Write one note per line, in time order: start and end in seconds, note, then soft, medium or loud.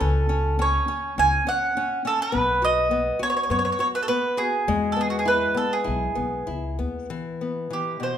0.00 0.77 C#2 medium
0.00 0.28 C#4 medium
0.00 0.63 A4 medium
0.29 0.58 C#4 soft
0.59 0.87 C#4 medium
0.59 1.21 C#5 medium
0.88 1.17 C#4 medium
1.18 1.37 C#2 medium
1.18 1.45 C#4 medium
1.18 1.46 G#5 loud
1.47 1.76 C#4 medium
1.47 2.02 F#5 medium
1.77 2.04 C#4 medium
2.05 2.33 C#4 medium
2.05 2.21 A4 medium
2.22 2.64 B4 medium
2.32 3.10 B1 medium
2.32 2.90 B3 medium
2.62 2.90 F#4 medium
2.62 3.23 D#5 loud
2.91 3.19 B3 medium
3.19 3.48 F#4 medium
3.19 3.29 C#5 medium
3.30 3.35 C#5 medium
3.37 3.42 C#5 medium
3.43 3.50 C#5 medium
3.50 3.69 F#2 loud
3.50 3.79 B3 medium
3.50 3.58 C#5 medium
3.59 3.64 C#5 medium
3.65 3.71 C#5 medium
3.72 3.79 C#5 medium
3.79 4.08 F#4 medium
3.79 3.87 C#5 medium
3.95 4.02 B4 medium
4.03 4.08 A4 medium
4.08 4.37 B3 medium
4.08 4.39 B4 medium
4.37 4.66 F#4 medium
4.37 4.92 G#4 medium
4.68 5.45 E2 medium
4.68 7.06 G#3 medium
4.92 5.00 A4 medium
4.96 5.25 B3 medium
5.01 5.09 G#4 medium
5.10 5.18 F#4 medium
5.19 5.27 G#4 medium
5.25 5.55 E4 medium
5.25 5.57 B4 medium
5.54 5.85 B3 medium
5.54 5.72 A4 medium
5.73 6.76 G#4 medium
5.84 6.07 B1 medium
5.84 6.15 E4 soft
6.15 6.45 B1 medium
6.15 6.47 B3 soft
6.47 6.76 C#2 medium
6.47 6.78 E4 soft
6.79 7.07 D#2 medium
6.79 7.09 B3 soft
7.10 7.69 E3 medium
7.41 7.70 B3 soft
7.70 7.99 E3 soft
7.70 8.03 G4 medium
8.00 8.18 B2 soft
8.00 8.18 C5 medium